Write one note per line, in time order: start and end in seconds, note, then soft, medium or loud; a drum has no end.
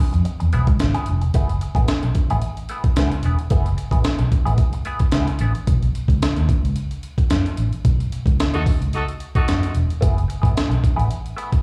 0.00 muted clean electric guitar stroke soft
0.13 0.24 F2 medium
0.13 muted clean electric guitar stroke soft
0.13 closed hi-hat medium
0.25 muted clean electric guitar stroke soft
0.25 closed hi-hat medium
0.40 0.52 E2 medium
0.40 muted clean electric guitar stroke soft
0.40 closed hi-hat soft
0.53 0.68 B1 loud
0.53 0.69 F3 medium
0.53 0.68 B3 medium
0.53 0.67 E4 loud
0.53 0.67 G#4 medium
0.53 closed hi-hat medium
0.67 0.78 C#2 medium
0.67 muted clean electric guitar stroke soft
0.67 kick medium
0.67 closed hi-hat soft
0.79 0.93 G#1 loud
0.79 muted clean electric guitar stroke soft
0.79 snare loud
0.79 closed hi-hat medium
0.94 1.07 F3 medium
0.94 1.08 B3 medium
0.94 1.08 E4 loud
0.94 1.08 G#4 medium
0.94 closed hi-hat medium
1.06 1.23 F1 medium
1.06 muted clean electric guitar stroke soft
1.06 closed hi-hat medium
1.22 1.33 E1 medium
1.22 muted clean electric guitar stroke soft
1.22 closed hi-hat soft
1.34 1.57 F#1 medium
1.34 1.51 A3 medium
1.34 1.51 B3 medium
1.34 1.51 E4 medium
1.34 1.52 G#4 medium
1.34 kick loud
1.34 closed hi-hat medium
1.49 closed hi-hat medium
1.61 muted clean electric guitar stroke soft
1.61 closed hi-hat medium
1.75 1.86 A1 loud
1.75 1.87 A3 medium
1.75 1.87 B3 medium
1.75 1.87 E4 medium
1.75 1.87 G#4 medium
1.75 kick medium
1.75 closed hi-hat soft
1.88 muted clean electric guitar stroke soft
1.88 snare loud
1.88 closed hi-hat medium
2.03 2.14 B1 medium
2.03 muted clean electric guitar stroke soft
2.03 closed hi-hat soft
2.15 kick medium
2.15 closed hi-hat medium
2.30 2.41 A1 medium
2.30 2.41 A3 medium
2.30 2.41 B3 medium
2.30 2.42 E4 medium
2.30 2.42 G#4 medium
2.30 closed hi-hat medium
2.42 muted clean electric guitar stroke soft
2.42 closed hi-hat medium
2.57 closed hi-hat soft
2.69 2.83 A3 medium
2.69 2.84 B3 medium
2.69 2.84 E4 medium
2.69 2.83 G#4 medium
2.69 closed hi-hat medium
2.84 muted clean electric guitar stroke soft
2.84 kick medium
2.84 closed hi-hat medium
2.96 3.09 C#2 medium
2.96 3.14 A3 medium
2.96 3.11 B3 loud
2.96 3.11 E4 medium
2.96 3.10 G#4 loud
2.96 snare loud
2.96 closed hi-hat medium
3.12 muted clean electric guitar stroke medium
3.12 closed hi-hat medium
3.23 3.35 E1 medium
3.23 3.37 A3 medium
3.23 3.38 B3 medium
3.23 3.38 E4 medium
3.23 3.38 G#4 medium
3.23 closed hi-hat medium
3.39 muted clean electric guitar stroke soft
3.39 closed hi-hat soft
3.50 3.73 F#1 loud
3.50 3.67 A3 medium
3.50 3.68 B3 loud
3.50 3.68 E4 loud
3.50 3.68 G#4 loud
3.50 kick loud
3.50 closed hi-hat medium
3.66 closed hi-hat medium
3.77 muted clean electric guitar stroke soft
3.77 closed hi-hat medium
3.91 4.02 A1 medium
3.91 4.03 A3 soft
3.91 4.04 B3 soft
3.91 4.04 E4 medium
3.91 4.04 G#4 medium
3.91 kick medium
3.91 closed hi-hat medium
4.04 muted clean electric guitar stroke soft
4.04 snare loud
4.04 closed hi-hat medium
4.19 4.30 B1 medium
4.19 muted clean electric guitar stroke soft
4.19 closed hi-hat soft
4.32 kick medium
4.32 closed hi-hat medium
4.46 4.57 A1 medium
4.46 4.58 A3 medium
4.46 4.58 B3 medium
4.46 4.58 E4 medium
4.46 4.58 G#4 medium
4.46 closed hi-hat medium
4.58 muted clean electric guitar stroke soft
4.58 kick medium
4.58 closed hi-hat medium
4.73 muted clean electric guitar stroke soft
4.73 closed hi-hat medium
4.85 5.03 A3 medium
4.85 5.01 B3 medium
4.85 5.01 E4 medium
4.85 5.00 G#4 medium
4.85 closed hi-hat medium
4.99 muted clean electric guitar stroke soft
4.99 kick medium
4.99 closed hi-hat medium
5.12 5.25 C#2 medium
5.12 5.30 A3 medium
5.12 5.28 B3 medium
5.12 5.28 E4 loud
5.12 snare loud
5.12 closed hi-hat medium
5.16 5.27 G#4 loud
5.28 muted clean electric guitar stroke soft
5.28 closed hi-hat medium
5.39 5.52 A1 medium
5.39 5.54 A3 medium
5.39 5.54 B3 medium
5.39 5.54 E4 medium
5.39 5.53 G#4 medium
5.39 closed hi-hat medium
5.54 muted clean electric guitar stroke soft
5.54 closed hi-hat medium
5.67 5.90 B1 medium
5.67 kick loud
5.67 closed hi-hat medium
5.83 closed hi-hat soft
5.95 closed hi-hat medium
6.08 6.19 C#2 loud
6.08 kick medium
6.08 closed hi-hat soft
6.22 snare loud
6.22 closed hi-hat medium
6.37 6.47 D#2 medium
6.37 closed hi-hat medium
6.49 kick medium
6.49 closed hi-hat medium
6.64 6.74 C#2 medium
6.64 closed hi-hat medium
6.76 closed hi-hat medium
6.91 closed hi-hat soft
7.03 closed hi-hat medium
7.18 kick medium
7.18 closed hi-hat soft
7.30 7.43 F#2 medium
7.30 snare loud
7.30 closed hi-hat medium
7.46 closed hi-hat medium
7.57 7.70 A1 medium
7.57 closed hi-hat medium
7.73 closed hi-hat soft
7.85 8.07 B1 medium
7.85 kick loud
7.85 closed hi-hat medium
8.00 closed hi-hat soft
8.12 closed hi-hat medium
8.26 8.37 C#2 loud
8.26 kick medium
8.26 closed hi-hat medium
8.40 snare loud
8.40 closed hi-hat medium
8.54 8.64 D#2 medium
8.54 8.63 A3 medium
8.54 8.62 D#4 medium
8.54 8.63 F#4 loud
8.54 8.63 A4 loud
8.54 closed hi-hat soft
8.66 kick medium
8.66 open hi-hat medium
8.81 8.91 C#2 medium
8.81 closed hi-hat medium
8.93 9.03 A3 medium
8.93 9.03 D#4 medium
8.93 9.03 F#4 medium
8.93 9.03 A4 medium
8.93 closed hi-hat medium
9.08 closed hi-hat medium
9.20 closed hi-hat medium
9.35 9.73 A3 medium
9.35 9.74 D#4 loud
9.35 9.74 F#4 loud
9.35 9.73 A4 loud
9.35 kick medium
9.35 closed hi-hat soft
9.48 9.60 F#2 medium
9.48 snare loud
9.48 closed hi-hat medium
9.63 closed hi-hat medium
9.75 9.87 E1 medium
9.75 closed hi-hat medium
9.90 closed hi-hat medium
10.01 10.24 F#1 medium
10.01 10.18 A3 loud
10.01 10.18 B3 medium
10.01 10.19 E4 loud
10.01 10.19 G#4 loud
10.01 kick loud
10.01 closed hi-hat loud
10.18 closed hi-hat soft
10.28 muted clean electric guitar stroke soft
10.28 closed hi-hat medium
10.42 10.54 A1 loud
10.42 10.54 A3 medium
10.42 10.55 B3 medium
10.42 10.55 E4 medium
10.42 10.54 G#4 medium
10.42 kick medium
10.42 closed hi-hat medium
10.56 muted clean electric guitar stroke soft
10.56 snare loud
10.56 closed hi-hat medium
10.70 10.81 B1 medium
10.70 muted clean electric guitar stroke soft
10.70 closed hi-hat soft
10.84 kick medium
10.84 closed hi-hat medium
10.96 11.08 A1 medium
10.96 11.09 A3 medium
10.96 11.09 B3 medium
10.96 11.09 E4 medium
10.96 11.09 G#4 medium
10.96 closed hi-hat medium
11.10 muted clean electric guitar stroke soft
11.10 closed hi-hat medium
11.26 closed hi-hat medium
11.37 11.50 A3 medium
11.37 11.51 B3 medium
11.37 11.51 E4 medium
11.37 11.51 G#4 medium
11.37 closed hi-hat medium
11.52 kick medium
11.52 closed hi-hat medium